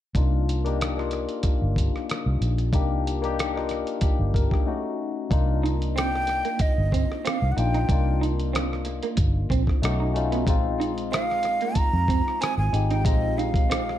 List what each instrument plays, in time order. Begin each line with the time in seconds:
0.15 fingered electric bass C2, tine electric piano A#3 D4 D#4 F4, kick, closed hi-hat
0.49 closed hi-hat
0.64 tine electric piano A#3 D4 D#4 G4, closed hi-hat
0.81 cross-stick, closed hi-hat
0.96 tine electric piano A#3 D4 D#4 F4, cross-stick
1.11 cross-stick, closed hi-hat
1.29 closed hi-hat
1.43 muted fingered electric bass stroke, kick, closed hi-hat
1.62 fingered electric bass G1
1.76 kick, closed hi-hat
1.96 cross-stick
2.10 cross-stick, closed hi-hat
2.26 fingered electric bass C2
2.41 fingered electric bass A#1, closed hi-hat
2.58 closed hi-hat
2.72 fingered electric bass C2, tine electric piano A#3 D4 D#4 G4, kick, closed hi-hat
3.07 closed hi-hat
3.22 tine electric piano A#3 D4 D#4 G4, closed hi-hat
3.39 cross-stick, closed hi-hat
3.54 tine electric piano A#3 D4 D#4 F4, cross-stick
3.69 cross-stick, closed hi-hat
3.87 closed hi-hat
4.01 tine electric piano G4, muted fingered electric bass stroke, kick, closed hi-hat
4.19 fingered electric bass G1
4.34 tine electric piano A#4, kick, closed hi-hat
4.51 tine electric piano G4, kick, cross-stick
4.65 tine electric piano A3 C#4 D#4 F#4
5.30 fingered electric bass C2, tine electric piano A#3 D4 D#4 F4, kick, closed hi-hat
5.63 clean electric guitar D#4, closed hi-hat
5.82 closed hi-hat
5.96 clean electric guitar C4, flute G5, cross-stick, closed hi-hat
6.16 cross-stick
6.27 muted clean electric guitar stroke, cross-stick, closed hi-hat
6.45 clean electric guitar A#3, closed hi-hat
6.59 flute D#5, muted fingered electric bass stroke, kick, closed hi-hat
6.78 fingered electric bass G1
6.92 clean electric guitar C4, kick, closed hi-hat
7.12 cross-stick
7.25 clean electric guitar C4, flute F5, cross-stick, closed hi-hat
7.42 fingered electric bass C2
7.52 flute F#5
7.57 fingered electric bass A#1, tine electric piano A#3 D4 D#4 F4, flute G5, muted clean electric guitar stroke, closed hi-hat
7.74 clean electric guitar D#4, closed hi-hat
7.89 fingered electric bass C2, tine electric piano A#3 D4 D#4 F4, kick, closed hi-hat
8.21 clean electric guitar D#4, closed hi-hat
8.40 closed hi-hat
8.53 clean electric guitar C4, cross-stick, closed hi-hat
8.73 cross-stick
8.85 muted clean electric guitar stroke, closed hi-hat
9.03 clean electric guitar A#3, closed hi-hat
9.17 fingered electric bass G1, kick, closed hi-hat
9.50 fingered electric bass A#1, clean electric guitar C4, kick, closed hi-hat
9.67 kick, cross-stick
9.82 fingered electric bass B1, tine electric piano A3 C#4 D#4 F#4, cross-stick, closed hi-hat
10.00 clean electric guitar D#4
10.14 tine electric piano A3 C#4 D#4 F4, muted clean electric guitar stroke, closed hi-hat
10.32 clean electric guitar B3, closed hi-hat
10.46 fingered electric bass A#1, tine electric piano G#3 C4 D#4 F4, kick, closed hi-hat
10.80 clean electric guitar D#4, closed hi-hat
10.98 closed hi-hat
11.12 clean electric guitar C4, flute F5, cross-stick, closed hi-hat
11.31 cross-stick
11.43 muted clean electric guitar stroke, cross-stick, closed hi-hat
11.61 clean electric guitar A#3, closed hi-hat
11.75 flute A#5, muted fingered electric bass stroke, kick, closed hi-hat
11.93 fingered electric bass F2
12.08 clean electric guitar C4, kick, closed hi-hat
12.28 cross-stick
12.41 clean electric guitar C4, flute G#5, cross-stick, closed hi-hat
12.58 fingered electric bass G#1, flute G#5
12.72 fingered electric bass G#1, tine electric piano G#3 C4 D#4 G4, muted clean electric guitar stroke, closed hi-hat
12.91 clean electric guitar D#4, flute G5, closed hi-hat
13.04 fingered electric bass A#1, tine electric piano G#3 C4 D#4 F4, flute D#5, kick, closed hi-hat
13.38 clean electric guitar D#4, flute F5, closed hi-hat
13.54 kick, closed hi-hat
13.70 clean electric guitar C4, cross-stick, closed hi-hat
13.89 cross-stick